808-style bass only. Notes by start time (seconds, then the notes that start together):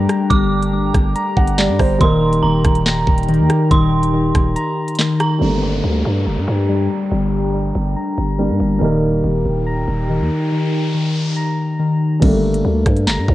0.31 G1
0.94 G1
1.37 G1
1.69 G2
1.80 G1
2.01 D#1
2.43 D#1
2.65 D#1
3.07 D#1
3.39 D#2
3.71 D#1
4.35 D#1
5.41 G1
5.84 D2
6.05 G2
6.26 F#1
6.37 G2
6.48 G2
7.11 G1
7.75 G1
8.18 G1
8.50 G2
8.60 G1
8.82 D#1
9.24 D#1
9.45 D#1
9.88 D#1
10.20 D#2
12.22 G1
12.65 D2
12.86 G2
13.07 F#1
13.18 G2
13.28 G2